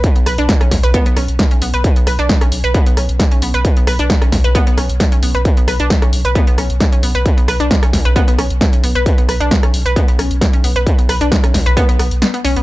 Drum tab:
HH |xxoxxxoxxxoxxxox|xxoxxxoxxxoxxxox|xxoxxxoxxxoxxxox|xxoxxxoxxxoxxxox|
SD |--r-oro---r-o---|--r-or----r-o---|--r-oro---r-o---|--r-or----r-o---|
BD |o---o-o-o---o---|o---o---o---o---|o---o-o-o---o---|o---o---o---o---|

HH |xxoxxxoxxxoxxxox|xxoxxxoxxxoxxxox|xxoxxxoxxxoxxxox|
SD |--r-oro---r-o---|--r-or----r-o---|--r-oro---r-o---|
BD |o---o-o-o---o---|o---o---o---o---|o---o-o-o-------|